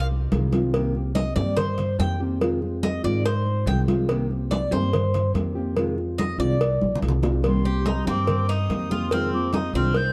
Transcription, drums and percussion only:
0.12 high conga soft
0.32 cowbell medium
0.32 high conga medium
0.52 cowbell medium
0.52 high conga medium
0.74 cowbell loud
0.74 high conga soft
0.95 high conga soft
1.15 cowbell medium
1.15 high conga loud
1.36 high conga medium
1.57 cowbell loud
1.57 high conga soft
1.57 low conga medium
1.78 cowbell medium
1.78 high conga soft
1.78 low conga medium
2.00 cowbell medium
2.00 high conga medium
2.41 cowbell loud
2.41 high conga soft
2.62 high conga soft
2.83 cowbell medium
2.83 high conga loud
3.04 high conga soft
3.26 cowbell loud
3.26 high conga soft
3.46 high conga soft
3.67 cowbell medium
3.67 high conga medium
3.88 cowbell medium
3.88 high conga medium
4.09 cowbell loud
4.09 high conga soft
4.31 high conga soft
4.51 cowbell medium
4.51 high conga loud
4.73 high conga medium
4.93 cowbell loud
4.93 high conga soft
4.93 low conga medium
5.14 cowbell medium
5.14 high conga soft
5.14 low conga medium
5.35 cowbell medium
5.35 high conga medium
5.77 cowbell loud
5.77 high conga soft
5.98 high conga soft
6.19 cowbell medium
6.19 high conga medium
6.40 high conga soft
6.61 cowbell loud
6.61 high conga soft
6.82 high conga medium
6.95 low conga medium
7.02 cowbell medium
7.09 low conga medium
7.23 cowbell medium
7.23 high bongo medium
7.23 low conga medium
7.44 cowbell loud
7.44 high conga soft
7.65 high conga soft
7.86 cowbell medium
7.86 high conga loud
8.07 high conga medium
8.27 cowbell loud
8.27 high conga soft
8.27 low conga medium
8.49 cowbell medium
8.49 high conga soft
8.70 cowbell medium
8.70 high conga medium
8.92 high conga medium
9.11 cowbell loud
9.11 high conga soft
9.33 high conga soft
9.53 cowbell medium
9.53 high conga loud
9.74 high conga soft
9.94 cowbell loud
9.94 high conga soft

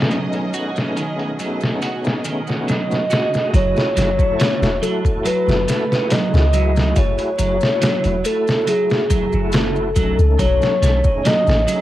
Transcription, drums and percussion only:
0.01 snare medium
0.01 closed hi-hat medium
0.11 closed hi-hat medium
0.11 maracas soft
0.33 closed hi-hat soft
0.33 maracas soft
0.53 closed hi-hat medium
0.53 maracas medium
0.76 snare soft
0.76 maracas soft
0.97 closed hi-hat medium
0.97 maracas soft
1.19 closed hi-hat soft
1.39 closed hi-hat medium
1.39 maracas medium
1.61 snare soft
1.61 maracas soft
1.82 closed hi-hat medium
1.82 maracas soft
2.05 snare soft
2.05 maracas soft
2.25 closed hi-hat medium
2.25 maracas medium
2.47 snare soft
2.47 maracas soft
2.68 snare soft
2.68 closed hi-hat medium
2.68 maracas soft
2.91 snare soft
2.91 maracas soft
3.10 snare medium
3.10 closed hi-hat medium
3.10 maracas medium
3.34 snare soft
3.34 maracas soft
3.54 kick loud
3.54 closed hi-hat medium
3.54 maracas medium
3.77 snare soft
3.77 maracas soft
3.97 snare soft
3.97 closed hi-hat medium
3.97 maracas medium
4.19 kick medium
4.19 maracas soft
4.40 snare loud
4.40 closed hi-hat medium
4.40 maracas soft
4.63 snare medium
4.63 maracas soft
4.83 closed hi-hat medium
4.83 maracas medium
5.05 kick medium
5.05 maracas soft
5.25 closed hi-hat medium
5.25 maracas soft
5.48 snare soft
5.48 maracas soft
5.68 snare medium
5.68 closed hi-hat medium
5.68 maracas medium
5.92 snare soft
5.92 maracas soft
6.10 snare loud
6.10 closed hi-hat medium
6.10 maracas medium
6.34 snare soft
6.34 maracas soft
6.53 closed hi-hat medium
6.53 maracas medium
6.76 snare soft
6.76 maracas soft
6.96 kick loud
6.96 closed hi-hat medium
6.96 maracas medium
7.18 closed hi-hat soft
7.18 maracas soft
7.39 closed hi-hat medium
7.39 maracas loud
7.61 snare medium
7.61 maracas soft
7.82 snare loud
7.82 closed hi-hat medium
7.82 maracas medium
8.04 closed hi-hat soft
8.04 maracas soft
8.25 closed hi-hat medium
8.25 maracas loud
8.47 snare medium
8.47 maracas soft
8.67 closed hi-hat medium
8.67 maracas medium
8.90 snare medium
8.90 maracas soft
9.10 kick medium
9.10 closed hi-hat medium
9.10 maracas loud
9.32 maracas soft
9.52 snare loud
9.52 closed hi-hat medium
9.52 maracas medium
9.76 maracas soft
9.96 kick loud
9.96 closed hi-hat medium
9.96 maracas medium
10.19 maracas soft
10.39 kick loud
10.39 closed hi-hat medium
10.39 maracas medium
10.62 snare soft
10.62 maracas soft
10.83 snare soft
10.83 closed hi-hat medium
10.83 maracas medium
11.04 kick medium
11.04 maracas soft
11.25 snare loud
11.25 closed hi-hat medium
11.25 maracas soft
11.47 snare medium
11.47 maracas soft
11.68 closed hi-hat medium
11.68 maracas loud

